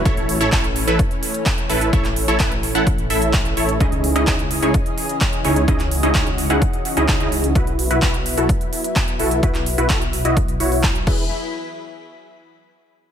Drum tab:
CC |----------------|----------------|----------------|----------------|
HH |xxoxxxoxxxoxxxox|xxoxxxoxxxoxxxox|xxoxxxoxxxoxxxox|xxoxxxoxxxoxxxox|
CP |----x-------x---|-x--x-------x---|----x-------x---|-x--x-------x---|
BD |o---o---o---o---|o---o---o---o---|o---o---o---o---|o---o---o---o---|

CC |----------------|--------------x-|----------------|
HH |xxoxxxoxxxoxxxox|xxoxxxoxxxooxx--|----------------|
CP |----x-------x---|-x--x-------x---|----------------|
BD |o---o---o---o---|o---o---o---o-o-|----------------|